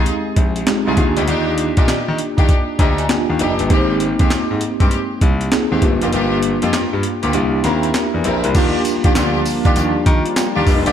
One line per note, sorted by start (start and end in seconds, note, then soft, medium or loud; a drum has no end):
0.00 0.67 G#3 medium
0.00 0.67 C4 medium
0.00 0.68 D#4 medium
0.00 0.68 G4 medium
0.06 closed hi-hat medium
0.36 0.61 A#1 medium
0.36 kick medium
0.36 closed hi-hat medium
0.56 closed hi-hat soft
0.67 0.97 G#3 medium
0.67 0.98 C4 medium
0.67 0.98 D#4 medium
0.67 0.97 G4 medium
0.67 snare loud
0.67 clap medium
0.67 closed hi-hat medium
0.86 0.95 C2 medium
0.86 1.01 D#4 medium
0.86 1.01 F4 medium
0.86 1.01 G#4 medium
0.97 1.13 D#2 medium
0.97 1.96 A#3 medium
0.97 1.96 D4 medium
0.97 1.96 F4 medium
0.97 1.96 G4 medium
0.97 kick medium
0.97 closed hi-hat medium
1.16 1.26 D2 medium
1.16 1.26 D4 medium
1.16 1.26 D#4 medium
1.16 1.27 G4 medium
1.16 closed hi-hat medium
1.27 1.67 D#2 loud
1.27 1.49 D4 medium
1.27 1.49 D#4 medium
1.27 1.49 G4 medium
1.27 closed hi-hat medium
1.58 closed hi-hat medium
1.77 1.86 A#2 medium
1.77 1.91 D4 medium
1.77 1.92 D#4 medium
1.77 1.92 G4 medium
1.77 kick loud
1.77 closed hi-hat medium
1.88 1.96 D#3 soft
1.88 snare loud
1.88 clap medium
1.88 closed hi-hat medium
2.08 2.17 D#3 medium
2.18 closed hi-hat medium
2.37 2.47 D#2 medium
2.37 2.52 D4 medium
2.37 2.52 D#4 medium
2.37 2.52 G4 medium
2.37 kick medium
2.37 closed hi-hat soft
2.49 kick medium
2.49 closed hi-hat medium
2.79 3.03 D2 loud
2.79 3.00 D4 medium
2.79 3.00 D#4 medium
2.79 3.01 G4 medium
2.79 2.97 A#5 medium
2.79 kick medium
2.79 closed hi-hat medium
2.98 3.09 G#5 medium
2.98 closed hi-hat soft
3.09 3.50 A#3 medium
3.09 3.50 D4 medium
3.09 3.50 F4 medium
3.09 3.50 G4 medium
3.09 3.38 G5 medium
3.09 snare loud
3.09 clap medium
3.09 closed hi-hat medium
3.30 3.38 D#2 loud
3.39 3.56 F1 medium
3.39 3.61 D4 medium
3.39 3.61 D#4 medium
3.39 3.61 G4 medium
3.39 3.68 D#5 medium
3.39 closed hi-hat medium
3.59 3.68 G1 loud
3.59 closed hi-hat medium
3.70 4.09 G#1 loud
3.70 3.91 G#3 medium
3.70 4.51 A#3 medium
3.70 3.91 C4 medium
3.70 4.51 C4 medium
3.70 4.51 D#4 medium
3.70 3.91 G4 loud
3.70 4.51 G4 medium
3.70 kick loud
3.70 closed hi-hat medium
4.00 closed hi-hat medium
4.19 4.29 D#2 medium
4.19 4.34 G#3 medium
4.19 4.34 C4 medium
4.19 4.34 G4 medium
4.19 kick loud
4.19 closed hi-hat medium
4.30 4.39 G#2 soft
4.30 snare loud
4.30 clap loud
4.30 closed hi-hat medium
4.51 4.59 G#2 medium
4.61 closed hi-hat medium
4.80 4.89 G2 medium
4.80 4.94 G#3 medium
4.80 4.95 C4 medium
4.80 4.95 G4 medium
4.80 kick loud
4.80 closed hi-hat soft
4.91 closed hi-hat medium
5.21 5.46 C2 medium
5.21 kick medium
5.21 closed hi-hat medium
5.41 closed hi-hat soft
5.52 5.81 A#3 medium
5.52 5.82 C4 medium
5.52 5.82 D#4 medium
5.52 5.83 G#4 medium
5.52 snare loud
5.52 clap medium
5.52 closed hi-hat medium
5.71 5.80 D#2 medium
5.71 5.85 G#3 medium
5.71 5.86 C4 medium
5.71 5.86 G4 medium
5.82 5.98 G1 loud
5.82 6.81 A#3 medium
5.82 6.81 D4 medium
5.82 6.81 F4 medium
5.82 6.81 G4 loud
5.82 kick medium
5.82 closed hi-hat medium
6.01 6.11 F1 medium
6.01 6.11 A#3 medium
6.01 6.11 F4 medium
6.01 6.12 G4 medium
6.01 closed hi-hat medium
6.12 6.52 G1 loud
6.12 6.34 A#3 medium
6.12 6.34 F4 medium
6.12 6.34 G4 loud
6.12 closed hi-hat medium
6.43 closed hi-hat medium
6.62 6.71 F2 loud
6.62 6.76 A#3 medium
6.62 6.76 F4 medium
6.62 6.77 G4 medium
6.62 closed hi-hat medium
6.73 6.81 G2 soft
6.73 snare loud
6.73 clap medium
6.73 closed hi-hat medium
6.93 7.01 G2 loud
7.03 closed hi-hat medium
7.22 7.32 D2 medium
7.22 7.37 A#3 medium
7.22 7.37 F4 medium
7.22 7.37 G4 medium
7.22 closed hi-hat soft
7.33 7.58 C2 loud
7.33 7.86 A#3 medium
7.33 7.86 D4 medium
7.33 7.86 E4 medium
7.33 7.86 G4 medium
7.33 closed hi-hat medium
7.64 7.88 D#2 medium
7.64 7.85 C4 medium
7.64 7.85 E4 medium
7.64 7.85 A#4 medium
7.64 7.83 G5 medium
7.64 snare medium
7.64 closed hi-hat medium
7.83 8.12 E5 medium
7.83 closed hi-hat soft
7.94 snare loud
7.94 clap medium
7.94 closed hi-hat medium
8.14 8.23 E2 medium
8.14 8.24 D5 medium
8.24 8.40 A#1 medium
8.24 8.46 C4 medium
8.24 8.46 E4 medium
8.24 8.46 A#4 medium
8.24 8.43 C5 medium
8.24 closed hi-hat medium
8.44 8.53 C2 medium
8.44 8.73 A#4 medium
8.44 closed hi-hat medium
8.54 8.70 D#2 loud
8.54 10.92 F3 medium
8.54 10.92 G3 medium
8.54 9.36 A#3 medium
8.54 10.92 A#3 medium
8.54 8.76 D4 medium
8.54 10.92 D4 medium
8.54 9.36 D4 medium
8.54 8.76 F4 medium
8.54 10.92 F4 medium
8.54 9.36 F4 medium
8.54 8.76 G4 loud
8.54 9.36 G4 loud
8.54 kick loud
8.54 closed hi-hat medium
8.54 crash loud
8.54 tambourine medium
8.85 closed hi-hat medium
8.85 tambourine medium
9.04 9.13 D#2 medium
9.04 9.14 D4 medium
9.04 9.14 F4 medium
9.04 9.15 G4 medium
9.04 kick loud
9.04 closed hi-hat medium
9.15 9.40 D2 medium
9.15 9.37 D4 medium
9.15 9.37 F4 medium
9.15 9.37 G4 medium
9.15 snare loud
9.15 clap loud
9.15 closed hi-hat medium
9.15 tambourine loud
9.46 open hi-hat medium
9.46 tambourine medium
9.65 9.74 D#2 medium
9.65 9.79 D4 medium
9.65 9.79 F4 medium
9.65 9.80 G4 medium
9.65 kick medium
9.65 closed hi-hat soft
9.76 9.92 D#2 medium
9.76 closed hi-hat medium
9.76 tambourine medium
10.06 10.22 D#3 loud
10.06 10.35 A#5 medium
10.06 kick loud
10.06 closed hi-hat medium
10.26 closed hi-hat soft
10.36 10.55 G5 medium
10.36 snare loud
10.36 clap loud
10.36 closed hi-hat medium
10.36 tambourine loud
10.55 10.65 D#2 medium
10.55 10.70 D4 medium
10.55 10.70 F4 medium
10.55 10.70 G4 medium
10.55 10.67 F5 medium
10.67 10.82 F1 loud
10.67 10.86 D#5 medium
10.67 kick medium
10.67 open hi-hat medium
10.67 tambourine medium
10.86 10.92 G1 loud
10.86 10.92 D4 medium
10.86 10.92 F4 medium
10.86 10.92 G4 medium
10.86 10.92 D5 medium
10.86 closed hi-hat medium